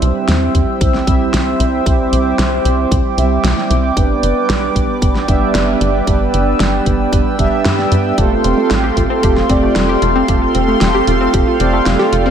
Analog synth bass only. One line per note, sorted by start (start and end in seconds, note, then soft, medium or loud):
0.02 0.12 C2 medium
0.28 0.49 E2 medium
0.55 0.65 E2 medium
0.81 1.02 C2 medium
1.07 1.28 C2 medium
1.33 1.55 C2 medium
1.60 1.81 C2 medium
1.86 2.07 C2 medium
2.12 2.33 C2 medium
2.39 2.60 C2 medium
2.65 2.86 C2 medium
2.91 3.02 C2 medium
3.18 3.39 C2 medium
3.44 3.55 C2 medium
3.70 3.91 C2 medium
3.97 4.18 G1 medium
4.23 4.33 G1 medium
4.49 4.70 B1 medium
4.76 4.86 B1 medium
5.02 5.23 G1 medium
5.28 5.49 G1 medium
5.55 5.76 G1 medium
5.81 6.02 G1 medium
6.07 6.28 G1 medium
6.34 6.55 G1 medium
6.60 6.81 G1 medium
6.86 7.07 G1 medium
7.13 7.23 G1 loud
7.39 7.49 G1 loud
7.65 7.86 G2 medium
7.92 8.13 G2 medium
8.18 8.39 F1 loud
8.44 8.55 F1 medium
8.71 8.91 A1 medium
8.97 9.07 A1 medium
9.23 9.44 F1 medium
9.49 9.70 F1 medium
9.76 9.97 F1 medium
10.02 10.23 F1 medium
10.28 10.49 F1 medium
10.55 10.76 F1 medium
10.81 11.02 F1 medium
11.07 11.28 F1 medium
11.34 11.44 F1 medium
11.60 11.81 F1 medium
11.86 11.97 F1 medium
12.12 12.30 F1 medium